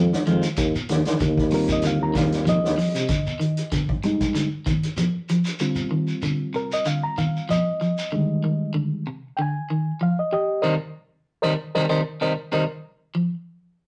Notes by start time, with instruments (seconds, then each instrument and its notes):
Already playing: tuba F2, reed electric piano D#3 G3 G#3 F4, clean electric guitar F3
0.13 snare
0.26 tuba F2, clean electric guitar D#3 F3 G#3 C4 F4, closed hi-hat, shekere
0.42 closed hi-hat, shekere
0.57 tuba D#2, muted clean electric guitar stroke, kick, closed hi-hat, shekere
0.75 shekere
0.89 tuba D#2, clean electric guitar D#3, snare, closed hi-hat
1.05 tuba D#3, snare, closed hi-hat, shekere
1.20 tuba D#2, clean electric guitar D3, kick, closed hi-hat, shekere
1.38 kick, snare
1.51 clean electric guitar C3, reed electric piano G3 C4 F4 A#4, open hi-hat, shekere
1.68 reed electric piano D#5, kick, closed hi-hat, shekere
1.82 clean electric guitar D3, closed hi-hat, shekere
1.87 reed electric piano F5
2.01 tuba D#2, reed electric piano A#5
2.14 clean electric guitar D#3, reed electric piano F5, kick, snare, closed hi-hat, shekere
2.32 snare, closed hi-hat, shekere
2.45 clean electric guitar F3, reed electric piano D#5, closed hi-hat, shekere
2.63 tuba D#2, snare
2.78 clean electric guitar F3, open hi-hat, shekere
2.94 tuba C3, closed hi-hat, shekere
3.08 clean electric guitar D3, kick, closed hi-hat, shekere
3.27 shekere
3.40 clean electric guitar D#3, closed hi-hat
3.57 closed hi-hat, shekere
3.72 clean electric guitar D3, kick, closed hi-hat, shekere
3.89 kick
4.03 clean electric guitar C3, reed electric piano G3 G#3 D#4, closed hi-hat, shekere
4.21 kick, closed hi-hat, shekere
4.35 clean electric guitar D3, closed hi-hat, shekere
4.66 clean electric guitar D#3, kick, closed hi-hat, shekere
4.83 closed hi-hat, shekere
4.97 clean electric guitar F3, closed hi-hat, shekere
5.29 clean electric guitar F3, closed hi-hat, shekere
5.45 closed hi-hat, shekere
5.59 clean electric guitar D3, reed electric piano G3 C4 F4, shekere
5.75 shekere
5.91 clean electric guitar D#3
6.08 shekere
6.22 clean electric guitar D3, shekere
6.54 clean electric guitar C3, reed electric piano A#4, shekere
6.72 reed electric piano D#5, shekere
6.85 clean electric guitar D3, reed electric piano F5, shekere
7.04 reed electric piano A#5
7.18 clean electric guitar D#3, reed electric piano F5, shekere
7.36 shekere
7.49 clean electric guitar F3, reed electric piano D#5, shekere
7.81 clean electric guitar F3, shekere
7.98 shekere
8.12 clean electric guitar D3, reed electric piano D#3 G3 G#3
8.44 clean electric guitar D#3
8.74 clean electric guitar D3
9.07 clean electric guitar C3
9.37 clean electric guitar D3, reed electric piano G5
9.42 reed electric piano G#5
9.70 clean electric guitar D#3
10.01 clean electric guitar F3, reed electric piano F5
10.19 reed electric piano D#5
10.32 reed electric piano G4 D#5, muted clean electric guitar stroke
10.62 clean electric guitar C3 D#3 G3, reed electric piano A#4 C5 D#5
11.42 clean electric guitar C3 D#3 G3, reed electric piano A#4 C5 D#5
11.75 clean electric guitar C3 D#3 G3, reed electric piano A#4 C5 D#5
11.89 clean electric guitar C3 D#3 G3, reed electric piano A#4 C5 D#5
12.21 clean electric guitar C3 D#3 G3, reed electric piano A#4 C5 D#5
12.52 clean electric guitar C3 D#3 G3, reed electric piano A#4 C5 D#5
13.15 clean electric guitar F3